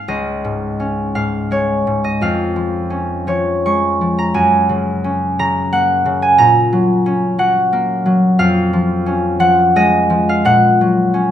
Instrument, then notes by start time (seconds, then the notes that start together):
harp
Already playing: G#3 D#4 G#4 F5 G#5
0.08 C#2 D#5
0.44 G#2
0.80 C#4
1.15 G#2 F5
1.51 G#3 C#5
1.87 G#2
2.04 D#5
2.21 F2 F5
2.56 F3
2.90 C#4
3.27 F3 C#5
3.66 G#3 C#6
4.01 F3
4.19 A#5
4.34 F#2 G#5
4.69 C#3
5.04 C#4
5.39 C#3 A#5
5.73 A#3 F#5
6.06 C#3
6.22 G#5
6.38 A#2 A#5
6.73 F#3
7.06 C#4
7.38 F#3 F#5
7.73 A#3
8.06 F#3
8.39 F2 F5
8.73 F3
9.06 C#4
9.39 F3 F#5
9.76 G#3 D#5
10.10 F3
10.29 F5
10.45 A#2 F#5
10.81 F#3
11.14 C#4